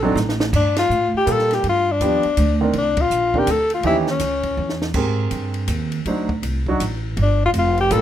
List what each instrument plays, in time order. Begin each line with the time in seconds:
Already playing: upright bass A#1
0.03 grand piano F#3 C4 D4 D#4 A4
0.15 upright bass A1, snare, hi-hat pedal
0.29 snare
0.40 snare
0.53 upright bass G2, alto saxophone D4, kick, crash
0.76 alto saxophone F4, snare, ride
0.90 upright bass A2, hi-hat pedal
1.14 alto saxophone G4, muted upright bass stroke
1.26 upright bass A#2, grand piano G3 A#3 F4 A4, kick, hi-hat pedal, ride
1.32 alto saxophone A4
1.39 snare
1.51 alto saxophone G4, snare, ride
1.64 upright bass G2, kick, ride
1.69 alto saxophone F4
1.91 alto saxophone D4
2.00 upright bass D#2, grand piano F3 B3 D4 G4, kick, hi-hat pedal, ride
2.23 muted upright bass stroke, ride
2.37 upright bass D2, kick, hi-hat pedal, ride
2.61 grand piano D#3 C4 D4 A#4
2.73 upright bass C2, kick, ride
2.78 alto saxophone D4
2.97 kick, ride
3.01 alto saxophone F4
3.10 upright bass A#1, hi-hat pedal
3.34 grand piano D#3 C4 D4 A#4, kick
3.38 alto saxophone G4
3.47 upright bass D2, alto saxophone A4, kick, hi-hat pedal, ride
3.70 alto saxophone F4, ride
3.83 upright bass D#2, grand piano E3 C#4 D#4 G4, alto saxophone E4, kick, ride
4.07 alto saxophone C#4, snare
4.20 upright bass C#2, kick, snare, hi-hat pedal, ride
4.43 kick, ride
4.57 upright bass E2
4.69 snare
4.82 snare
4.94 upright bass G#2, grand piano C4 G4 G#4 A#4, kick, crash
5.31 upright bass G2, kick, hi-hat pedal, ride
5.54 ride
5.68 upright bass D#2, kick, hi-hat pedal, ride
5.92 ride
6.06 upright bass D2, grand piano F#3 D4 D#4 C5, kick, ride
6.29 kick
6.43 upright bass C2, kick, hi-hat pedal, ride
6.66 grand piano F#3 D4 D#4 F#4, kick
6.80 upright bass A1, kick, hi-hat pedal, ride
7.17 upright bass G1, kick, ride
7.22 alto saxophone D4
7.45 alto saxophone F4
7.53 upright bass F1, kick, hi-hat pedal, ride
7.59 alto saxophone F4
7.78 alto saxophone G4, ride
7.91 upright bass A1, grand piano G3 A#3 F4 A4, alto saxophone A4, kick, hi-hat pedal, ride